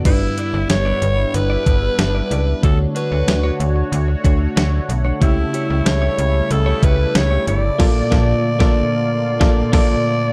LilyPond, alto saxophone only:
\new Staff \with { instrumentName = "Alto saxophone" } { \time 4/4 \key g \lydian \tempo 4 = 93 e'4 cis''4 b'2 | a'8 b'4 r2 r8 | e'4 cis''4 a'8 b'8 cis''8 d''8~ | d''2. d''4 | }